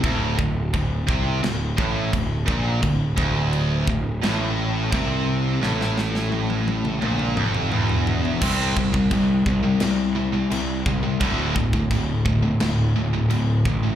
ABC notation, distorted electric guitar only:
X:1
M:4/4
L:1/16
Q:1/4=86
K:Dm
V:1 name="Distorted electric guitar" clef=bass
D,,2 D,,2 D,,2 C,2 D,,2 A,,2 D,,2 B,,2 | D,,2 D,,4 D,,2 A,,4 C,4 | A,,8 B,,2 F,,2 E,,4 | [C,G,C]2 [C,G,] [C,G,] [C,G,]2 [C,G,] [C,G,] [C,G,]2 [C,G,] [C,G,] [C,G,]2 [C,G,] [C,G,] |
[D,,A,,D,]2 [D,,A,,] [D,,A,,] [D,,A,,]2 [D,,A,,] [D,,A,,] [D,,A,,]2 [D,,A,,] [D,,A,,] [D,,A,,]2 [D,,A,,] [D,,A,,] |]